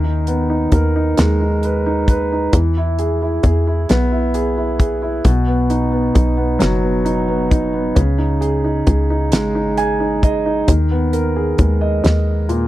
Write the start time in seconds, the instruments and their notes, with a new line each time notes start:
Already playing: fm bass D#2, grand piano D#3
0.04 grand piano D#4
0.27 grand piano B3, closed hi-hat
0.50 grand piano D#4
0.72 fm bass D#2, grand piano A#4, kick, closed hi-hat
0.96 grand piano D#4
1.17 fm bass D#2, grand piano G#3, snare, closed hi-hat
1.41 grand piano D#4
1.63 grand piano B4, closed hi-hat
1.86 grand piano D#4
2.08 grand piano B4, kick, closed hi-hat
2.32 grand piano D#4
2.53 fm bass E2, grand piano E3, kick, closed hi-hat
2.77 grand piano E4
2.99 grand piano G#4, closed hi-hat
3.22 grand piano E4
3.43 fm bass E2, grand piano G#4, kick, closed hi-hat
3.67 grand piano E4
3.89 fm bass B1, grand piano B3, snare, closed hi-hat
4.12 grand piano E4
4.34 grand piano G#4, closed hi-hat
4.58 grand piano E4
4.79 grand piano G#4, kick, closed hi-hat
5.02 grand piano E4
5.25 fm bass B1, grand piano B2, kick, closed hi-hat
5.47 grand piano B3
5.70 grand piano D#4, closed hi-hat
5.92 grand piano B3
6.14 fm bass B1, grand piano D#4, kick, closed hi-hat
6.37 grand piano B3
6.59 fm bass F#1, grand piano F#3, snare, closed hi-hat
6.82 grand piano B3
7.05 grand piano D#4, closed hi-hat
7.28 grand piano B3
7.51 grand piano D#4, kick, closed hi-hat
7.73 grand piano B3
7.95 fm bass C#2, grand piano C#3, kick, closed hi-hat
8.18 grand piano D#4
8.41 grand piano G#4, closed hi-hat
8.64 grand piano D#4
8.87 fm bass C#2, grand piano G#4, kick, closed hi-hat
9.10 grand piano D#4
9.32 fm bass G#1, grand piano G#3, snare, closed hi-hat
9.55 grand piano D#4
9.77 grand piano G#4 G#5, closed hi-hat
10.00 grand piano D#4
10.23 grand piano G#4 D#5, kick, closed hi-hat
10.46 grand piano D#4
10.68 fm bass D#2, grand piano D#3, kick, closed hi-hat
10.91 grand piano B3
11.13 grand piano A#4, closed hi-hat
11.36 grand piano G#4
11.58 fm bass D#2, grand piano G#3, kick, closed hi-hat
11.81 grand piano D#5
12.04 fm bass D#2, snare, closed hi-hat
12.49 grand piano A#2, closed hi-hat